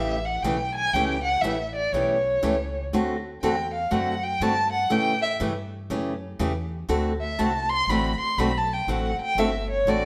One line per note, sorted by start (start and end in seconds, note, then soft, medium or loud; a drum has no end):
0.00 0.43 A1 medium
0.00 0.16 C#3 medium
0.00 0.16 E3 medium
0.00 0.17 A3 medium
0.00 0.17 C#4 medium
0.00 0.17 G4 medium
0.00 0.27 E5 medium
0.25 0.44 F#5 medium
0.43 0.92 B1 medium
0.43 0.56 C#3 medium
0.43 0.56 E3 medium
0.43 0.56 A3 medium
0.43 0.56 C#4 medium
0.43 0.56 G4 medium
0.43 0.74 G5 medium
0.75 0.95 G#5 loud
0.93 1.42 C#2 medium
0.93 1.16 C#3 medium
0.93 1.16 E3 medium
0.93 1.17 A3 medium
0.93 1.16 C#4 medium
0.93 1.17 G4 medium
0.93 1.23 G5 medium
1.24 1.43 F#5 medium
1.42 1.91 A1 medium
1.42 1.55 C#3 medium
1.42 1.55 E3 medium
1.42 1.56 A3 medium
1.42 1.55 C#4 medium
1.42 1.56 G4 medium
1.42 1.74 E5 medium
1.75 1.93 D5 medium
1.92 2.41 B1 medium
1.92 2.15 C#3 medium
1.92 2.16 E3 medium
1.92 2.16 A3 medium
1.92 2.16 C#4 medium
1.92 2.16 G4 medium
1.92 2.83 C#5 medium
2.43 2.91 C#2 medium
2.43 2.54 C#3 medium
2.43 2.54 E3 medium
2.43 2.55 A3 medium
2.43 2.55 C#4 medium
2.43 2.55 G4 medium
2.93 3.41 D2 medium
2.93 3.15 D3 medium
2.93 3.15 A3 medium
2.93 3.15 C4 medium
2.93 3.15 F#4 medium
2.93 3.15 A4 medium
3.42 3.91 E2 medium
3.42 3.54 D3 medium
3.42 3.54 A3 medium
3.42 3.54 C4 medium
3.42 3.54 F#4 medium
3.42 3.55 A4 medium
3.42 3.72 G5 medium
3.74 3.92 F5 medium
3.91 4.40 F#2 medium
3.91 4.13 D3 medium
3.91 4.13 A3 medium
3.91 4.14 C4 medium
3.91 4.13 F#4 medium
3.91 4.14 A4 medium
3.91 4.25 F#5 medium
4.23 4.43 G5 medium
4.40 4.89 G2 medium
4.40 4.53 D3 medium
4.40 4.53 A3 medium
4.40 4.53 C4 medium
4.40 4.53 F#4 medium
4.40 4.53 A4 medium
4.40 4.72 A5 medium
4.72 4.93 F#5 medium
4.90 5.39 A2 medium
4.90 5.12 C#3 medium
4.90 5.13 E3 medium
4.90 5.13 A3 medium
4.90 5.13 C#4 medium
4.90 5.13 G4 medium
4.90 5.21 G5 medium
5.22 5.33 E5 medium
5.40 5.89 G2 medium
5.40 5.52 C#3 medium
5.40 5.52 E3 medium
5.40 5.52 A3 medium
5.40 5.52 C#4 medium
5.40 5.53 G4 medium
5.90 6.38 F#2 medium
5.90 6.12 C#3 medium
5.90 6.12 E3 medium
5.90 6.12 A3 medium
5.90 6.13 C#4 medium
5.90 6.13 G4 medium
6.39 6.88 E2 medium
6.39 6.51 C#3 medium
6.39 6.52 E3 medium
6.39 6.52 A3 medium
6.39 6.52 C#4 medium
6.39 6.52 G4 medium
6.89 7.37 D2 medium
6.89 7.11 D3 medium
6.89 7.11 A3 medium
6.89 7.11 C4 medium
6.89 7.11 F#4 medium
6.89 7.12 A4 medium
7.21 7.41 E5 medium
7.39 7.87 C2 medium
7.39 7.51 D3 medium
7.39 7.51 A3 medium
7.39 7.51 C4 medium
7.39 7.51 F#4 medium
7.39 7.51 A4 medium
7.39 7.71 A5 medium
7.69 7.91 C6 loud
7.87 8.18 A1 medium
7.87 8.11 D3 medium
7.87 8.11 A3 medium
7.87 8.11 C4 medium
7.87 8.11 F#4 medium
7.87 8.12 A4 medium
7.87 8.20 B5 medium
8.20 8.40 C6 medium
8.20 muted upright bass stroke soft
8.38 8.86 B1 medium
8.38 8.50 D3 medium
8.38 8.50 A3 medium
8.38 8.51 C4 medium
8.38 8.51 F#4 medium
8.38 8.51 A4 medium
8.38 8.59 B5 medium
8.57 8.74 A5 medium
8.73 8.92 G5 medium
8.87 9.17 A1 medium
8.87 9.10 D3 medium
8.87 9.10 A3 medium
8.87 9.10 C4 medium
8.87 9.11 F#4 medium
8.87 9.11 A4 medium
8.87 9.21 F#5 medium
9.19 9.41 G5 loud
9.19 muted upright bass stroke soft
9.35 9.85 G1 medium
9.35 9.49 D3 medium
9.35 9.49 A3 medium
9.35 9.50 C4 medium
9.35 9.50 F#4 medium
9.35 9.50 A4 medium
9.35 9.70 E5 medium
9.71 9.91 C#5 medium
9.85 10.05 A1 medium
9.85 10.05 D3 medium
9.85 10.05 A3 medium
9.85 10.05 C4 medium
9.85 10.05 F#4 medium
9.85 10.05 A4 medium
9.85 10.05 D5 medium